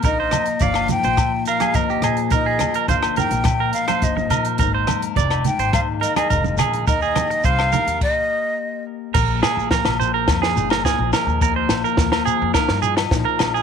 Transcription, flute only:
\new Staff \with { instrumentName = "Flute" } { \time 4/4 \key aes \lydian \tempo 4 = 106 ees''4 f''8 g''4 f''8 ees''8. r16 | ees''4 f''8 g''4 f''8 ees''8. r16 | r4. g''8 f''8 ees''16 ees''8. r8 | ees''4 f''4 ees''4. r8 |
r1 | r1 | }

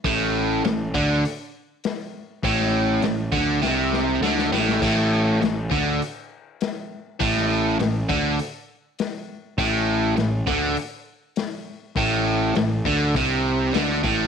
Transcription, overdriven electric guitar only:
\new Staff \with { instrumentName = "Overdriven electric guitar" } { \clef bass \time 4/4 \key a \minor \tempo 4 = 101 a,4 a,8 d8 r2 | a,4 a,8 d8 c4 d8 a,8 | a,4 a,8 d8 r2 | a,4 a,8 d8 r2 |
a,4 a,8 d8 r2 | a,4 a,8 d8 c4 d8 a,8 | }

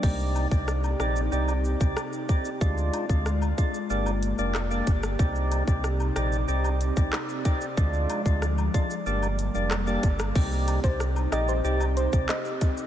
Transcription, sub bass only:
\new Staff \with { instrumentName = "Sub bass" } { \clef bass \time 4/4 \key c \minor \tempo 4 = 93 c,8. c,8. bes,,8 c,8. c,16 r4 | d,8 r16 d,8. r8 g,,8. f,,8. g,,8 | c,8. c,8. bes,,8 c,8. c,16 r4 | d,8 r16 d,8. r8 g,,8. f,,8. g,,8 |
c,8. c,8. bes,,8 c,8. c,16 r4 | }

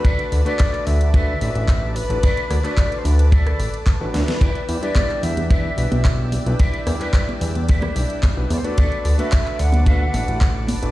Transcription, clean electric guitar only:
\new Staff \with { instrumentName = "Clean electric guitar" } { \time 4/4 \key e \minor \tempo 4 = 110 <fis' a' b' d''>8 r16 <fis' a' b' d''>8 r8. <fis' a' b' d''>4 r4 | <fis' a' b' d''>8 r16 <fis' a' b' d''>8 r8. <fis' a' b' d''>4 a''8 e''8 | <e' g' b' d''>8 r16 <e' g' b' d''>8 r8. <e' g' b' d''>4 r4 | <e' g' b' d''>8 r16 <e' g' b' d''>8 r8. <e' g' b' d''>4 r4 |
<fis' a' b' d''>8 r16 <fis' a' b' e''>8 r8. <fis' a' b' e''>4 r4 | }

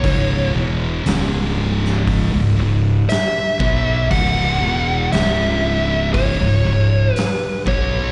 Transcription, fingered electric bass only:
\new Staff \with { instrumentName = "Fingered electric bass" } { \clef bass \time 4/4 \key cis \minor \tempo 4 = 59 cis,,8 e,,8 cis,,4~ cis,,16 cis,,16 cis,,8 r8 b,,8 | cis,,8 e,,8 cis,,4~ cis,,16 cis,,16 cis,,8 r8 b,,8 | }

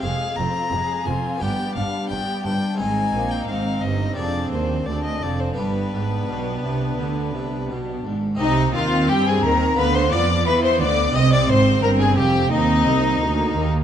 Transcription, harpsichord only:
<<
  \new Staff \with { instrumentName = "Harpsichord" } { \time 4/4 \key c \minor \tempo 4 = 87 <c' aes' c''>2 <b g' d''>2 | <aes c' ees' c''>2 <c' d' aes'>2 | <b d' g'>1 | <c' ees' g'>2 <b f'>2 |
<c' ees' g'>1 | }
  \new Staff \with { instrumentName = "Harpsichord" } { \clef bass \time 4/4 \key c \minor f,8 f,8 f,8 f,8 g,8 g,8 g,8 g,8 | aes,8 bes,8 aes,8 g,8 f,8 ees,8 d,8 f,8 | g,8 aes,8 b,8 c8 d8 c8 b,8 aes,8 | c8 ees8 g8 ees8 d8 f8 e8 d8 |
c8 aes,8 g,8 f,8 ees,8 c,8 d,8 ees,8 | }
>>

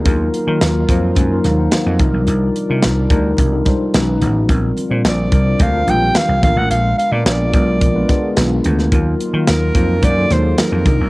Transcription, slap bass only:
\new Staff \with { instrumentName = "Slap bass" } { \clef bass \time 4/4 \key ees \lydian \tempo 4 = 108 ees,8 r16 ees16 ees,8 f,8 ges,8 ees,8 r16 f,16 c,16 ces,16 | c,8 r16 c16 c,8 d,8 c,8 r8 b,,8 a,,8 | bes,,8 r16 bes,16 bes,,8 c,8 d,8 bes,,8 r16 c,16 bes,,16 a,,16 | bes,,8 r16 bes,16 bes,,8 ces,8 bes,,8 r8 ces,8 d,8 |
ees,8 r16 ees16 ees,8 f,8 ges,8 ees,8 r16 f,16 c,16 ces,16 | }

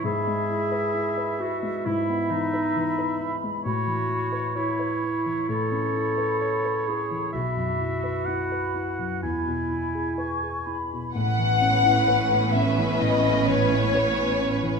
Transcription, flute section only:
\new Staff \with { instrumentName = "Flute section" } { \time 4/4 \key a \lydian \tempo 4 = 65 b''2 b''2 | b''4 b''4 b''2 | b''2 b''4 cis'''8 b''8 | fis''4. e''8 dis''8 cis''4. | }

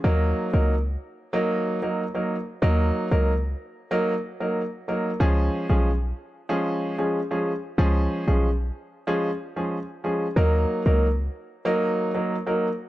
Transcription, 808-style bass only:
\new Staff \with { instrumentName = "808-style bass" } { \clef bass \time 4/4 \key ees \minor \tempo 4 = 93 ees,8 r16 des,8. r2 r8 | ees,8 r16 des,8. r2 r8 | des,8 r16 ces,8. r2 r8 | des,8 r16 ces,8. r2 r8 |
ees,8 r16 des,8. r2 r8 | }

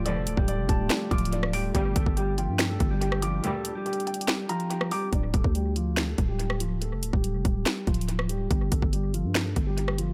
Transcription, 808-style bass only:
\new Staff \with { instrumentName = "808-style bass" } { \clef bass \time 4/4 \key d \minor \tempo 4 = 142 d,,16 f,,16 d,,16 d,,8 f,,16 d,,8 r8 d,,4. | g,,8 g,,16 g,,4 g,8. g,,4. | r1 | d,,8 d,,16 d,4.~ d,16 d,,4.~ |
d,,16 f,,16 d,,16 d,,8 f,,16 d,,8 r8 d,,4. | g,,8 g,,16 g,,4 g,8. g,,4. | }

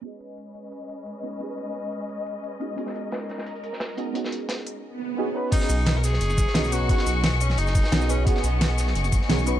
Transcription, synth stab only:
\new Staff \with { instrumentName = "Synth stab" } { \time 4/4 \key b \major \tempo 4 = 175 <b cis' dis' fis' gis'>2.~ <b cis' dis' fis' gis'>8 <b cis' dis' fis' gis'>8 | <b cis' dis' fis' gis'>2.~ <b cis' dis' fis' gis'>8 <b cis' dis' fis' gis'>8 | <b cis' dis' fis' gis'>2.~ <b cis' dis' fis' gis'>8 <b cis' dis' fis' gis'>8 | <b cis' dis' fis' gis'>2. <b cis' dis' fis' gis'>8 <b cis' dis' fis' b'>8 |
<b cis' dis' fis' gis'>2. <b cis' dis' fis' gis'>8 <b cis' dis' fis' b'>8 | <b cis' dis' fis' gis'>2. <b cis' dis' fis' gis'>8 <b cis' dis' fis' b'>8 | <b cis' dis' fis' gis'>2. <b cis' dis' fis' gis'>8 <b cis' dis' fis' b'>8 | }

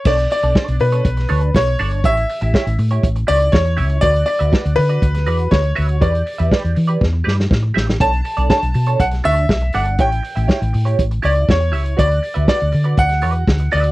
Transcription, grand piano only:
\new Staff \with { instrumentName = "Grand piano" } { \time 4/4 \key b \minor \tempo 4 = 121 d''8 d''4 b'4. cis''4 | e''4. r4 d''8 cis''4 | d''8 d''4 b'4. cis''4 | d''4. r2 r8 |
a''4 a''4 fis''8 e''4 fis''8 | g''2 r8 d''8 cis''4 | d''4 d''4 fis''4. d''8 | }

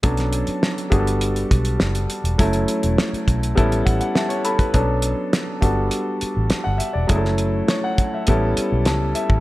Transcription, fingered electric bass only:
\new Staff \with { instrumentName = "Fingered electric bass" } { \clef bass \time 4/4 \key b \minor \tempo 4 = 102 b,,8. r8. g,,4 b,,8 fis,,8 r16 e,,16 | fis,,8 r16 e,,16 r8 b,,8 a,,8 a,,16 r4 r16 | b,,8. r8. g,,8 r8. a,,16 r16 g,,16 r16 e,,16 | fis,,4 r4 a,,8 r16 b,,16 cis,8 r16 a,,16 | }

